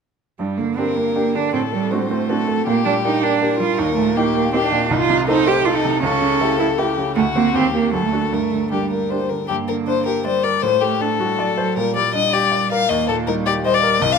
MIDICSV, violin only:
0, 0, Header, 1, 2, 480
1, 0, Start_track
1, 0, Key_signature, -2, "minor"
1, 0, Tempo, 376412
1, 508, Time_signature, 3, 2, 24, 8
1, 9138, Tempo, 386349
1, 12498, Tempo, 377358
1, 17986, End_track
2, 0, Start_track
2, 0, Title_t, "Violin"
2, 0, Program_c, 0, 40
2, 987, Note_on_c, 0, 70, 43
2, 1906, Note_off_c, 0, 70, 0
2, 1962, Note_on_c, 0, 69, 43
2, 2436, Note_on_c, 0, 72, 43
2, 2455, Note_off_c, 0, 69, 0
2, 2923, Note_on_c, 0, 69, 50
2, 2942, Note_off_c, 0, 72, 0
2, 3403, Note_off_c, 0, 69, 0
2, 3409, Note_on_c, 0, 67, 55
2, 4339, Note_off_c, 0, 67, 0
2, 4371, Note_on_c, 0, 70, 55
2, 5316, Note_on_c, 0, 67, 53
2, 5335, Note_off_c, 0, 70, 0
2, 5777, Note_off_c, 0, 67, 0
2, 5785, Note_on_c, 0, 67, 56
2, 6251, Note_off_c, 0, 67, 0
2, 6272, Note_on_c, 0, 63, 62
2, 6733, Note_off_c, 0, 63, 0
2, 6748, Note_on_c, 0, 72, 59
2, 7212, Note_off_c, 0, 72, 0
2, 7228, Note_on_c, 0, 69, 62
2, 7688, Note_off_c, 0, 69, 0
2, 7702, Note_on_c, 0, 69, 67
2, 8651, Note_on_c, 0, 67, 55
2, 8670, Note_off_c, 0, 69, 0
2, 9129, Note_off_c, 0, 67, 0
2, 9136, Note_on_c, 0, 66, 53
2, 9619, Note_on_c, 0, 67, 47
2, 9638, Note_off_c, 0, 66, 0
2, 10076, Note_off_c, 0, 67, 0
2, 10084, Note_on_c, 0, 69, 45
2, 10590, Note_on_c, 0, 70, 41
2, 10608, Note_off_c, 0, 69, 0
2, 11018, Note_off_c, 0, 70, 0
2, 11061, Note_on_c, 0, 67, 38
2, 11284, Note_off_c, 0, 67, 0
2, 11296, Note_on_c, 0, 70, 39
2, 11541, Note_on_c, 0, 72, 44
2, 11560, Note_off_c, 0, 70, 0
2, 11783, Note_on_c, 0, 70, 37
2, 11802, Note_off_c, 0, 72, 0
2, 12003, Note_off_c, 0, 70, 0
2, 12011, Note_on_c, 0, 67, 59
2, 12108, Note_off_c, 0, 67, 0
2, 12264, Note_on_c, 0, 70, 49
2, 12358, Note_off_c, 0, 70, 0
2, 12498, Note_on_c, 0, 72, 60
2, 12729, Note_off_c, 0, 72, 0
2, 12737, Note_on_c, 0, 70, 55
2, 12973, Note_off_c, 0, 70, 0
2, 12999, Note_on_c, 0, 72, 56
2, 13217, Note_on_c, 0, 74, 55
2, 13236, Note_off_c, 0, 72, 0
2, 13453, Note_on_c, 0, 72, 64
2, 13472, Note_off_c, 0, 74, 0
2, 13698, Note_on_c, 0, 67, 57
2, 13717, Note_off_c, 0, 72, 0
2, 13947, Note_on_c, 0, 69, 54
2, 13967, Note_off_c, 0, 67, 0
2, 14906, Note_off_c, 0, 69, 0
2, 14914, Note_on_c, 0, 70, 58
2, 15149, Note_off_c, 0, 70, 0
2, 15154, Note_on_c, 0, 74, 58
2, 15383, Note_off_c, 0, 74, 0
2, 15391, Note_on_c, 0, 75, 64
2, 15628, Note_on_c, 0, 74, 63
2, 15647, Note_off_c, 0, 75, 0
2, 16113, Note_off_c, 0, 74, 0
2, 16119, Note_on_c, 0, 77, 66
2, 16341, Note_on_c, 0, 75, 61
2, 16360, Note_off_c, 0, 77, 0
2, 16574, Note_off_c, 0, 75, 0
2, 16581, Note_on_c, 0, 69, 57
2, 16680, Note_off_c, 0, 69, 0
2, 16823, Note_on_c, 0, 70, 57
2, 16921, Note_off_c, 0, 70, 0
2, 17065, Note_on_c, 0, 74, 69
2, 17161, Note_off_c, 0, 74, 0
2, 17307, Note_on_c, 0, 72, 77
2, 17422, Note_on_c, 0, 74, 68
2, 17442, Note_off_c, 0, 72, 0
2, 17775, Note_on_c, 0, 75, 82
2, 17794, Note_off_c, 0, 74, 0
2, 17906, Note_on_c, 0, 77, 77
2, 17925, Note_off_c, 0, 75, 0
2, 17986, Note_off_c, 0, 77, 0
2, 17986, End_track
0, 0, End_of_file